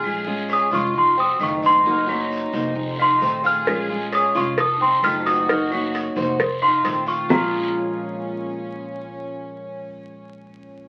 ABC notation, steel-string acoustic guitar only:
X:1
M:4/4
L:1/8
Q:1/4=132
K:Bbm
V:1 name="Steel-string acoustic guitar"
[F,A,DF] [A,DF]2 [A,DF] z2 [E,=A,CF]2 | [G,B,EG] [B,EG]2 [B,EG] z2 [E,=A,CF]2 | [F,A,DF] [A,DF]2 [A,DF] z2 [E,=A,CF]2 | [G,B,EG] [B,EG]2 [B,EG] z2 [E,=A,CF]2 |
[B,,F,A,DF]8- | [B,,F,A,DF]8 |]